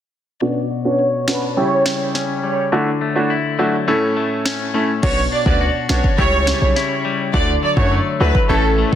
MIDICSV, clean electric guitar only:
0, 0, Header, 1, 2, 480
1, 0, Start_track
1, 0, Key_signature, 2, "minor"
1, 0, Tempo, 576923
1, 346, Time_signature, 4, 2, 24, 8
1, 7449, End_track
2, 0, Start_track
2, 0, Title_t, "Clean electric guitar"
2, 0, Program_c, 0, 27
2, 346, Note_on_c, 0, 47, 75
2, 586, Note_on_c, 0, 66, 61
2, 826, Note_on_c, 0, 73, 65
2, 1066, Note_on_c, 0, 62, 59
2, 1306, Note_on_c, 0, 49, 76
2, 1354, Note_off_c, 0, 47, 0
2, 1354, Note_off_c, 0, 62, 0
2, 1354, Note_off_c, 0, 66, 0
2, 1354, Note_off_c, 0, 73, 0
2, 1547, Note_on_c, 0, 55, 54
2, 1786, Note_on_c, 0, 61, 61
2, 2016, Note_off_c, 0, 55, 0
2, 2026, Note_on_c, 0, 55, 58
2, 2263, Note_off_c, 0, 49, 0
2, 2266, Note_on_c, 0, 50, 81
2, 2314, Note_off_c, 0, 55, 0
2, 2314, Note_off_c, 0, 61, 0
2, 2506, Note_on_c, 0, 57, 58
2, 2746, Note_on_c, 0, 64, 67
2, 2985, Note_on_c, 0, 54, 62
2, 3226, Note_on_c, 0, 45, 78
2, 3274, Note_off_c, 0, 50, 0
2, 3274, Note_off_c, 0, 54, 0
2, 3274, Note_off_c, 0, 57, 0
2, 3274, Note_off_c, 0, 64, 0
2, 3466, Note_on_c, 0, 57, 57
2, 3705, Note_on_c, 0, 61, 60
2, 3936, Note_off_c, 0, 57, 0
2, 3946, Note_on_c, 0, 57, 62
2, 4182, Note_off_c, 0, 45, 0
2, 4186, Note_on_c, 0, 47, 82
2, 4234, Note_off_c, 0, 57, 0
2, 4422, Note_off_c, 0, 61, 0
2, 4426, Note_on_c, 0, 62, 61
2, 4666, Note_on_c, 0, 66, 65
2, 4896, Note_off_c, 0, 62, 0
2, 4906, Note_on_c, 0, 62, 60
2, 5146, Note_on_c, 0, 49, 81
2, 5194, Note_off_c, 0, 47, 0
2, 5194, Note_off_c, 0, 62, 0
2, 5194, Note_off_c, 0, 66, 0
2, 5385, Note_on_c, 0, 55, 57
2, 5625, Note_on_c, 0, 64, 66
2, 5855, Note_off_c, 0, 55, 0
2, 5865, Note_on_c, 0, 55, 63
2, 6102, Note_off_c, 0, 49, 0
2, 6106, Note_on_c, 0, 50, 82
2, 6154, Note_off_c, 0, 55, 0
2, 6346, Note_on_c, 0, 54, 62
2, 6371, Note_off_c, 0, 64, 0
2, 6587, Note_on_c, 0, 57, 63
2, 6816, Note_off_c, 0, 54, 0
2, 6826, Note_on_c, 0, 54, 65
2, 7066, Note_on_c, 0, 45, 83
2, 7114, Note_off_c, 0, 50, 0
2, 7114, Note_off_c, 0, 54, 0
2, 7114, Note_off_c, 0, 57, 0
2, 7306, Note_on_c, 0, 57, 59
2, 7449, Note_off_c, 0, 45, 0
2, 7449, Note_off_c, 0, 57, 0
2, 7449, End_track
0, 0, End_of_file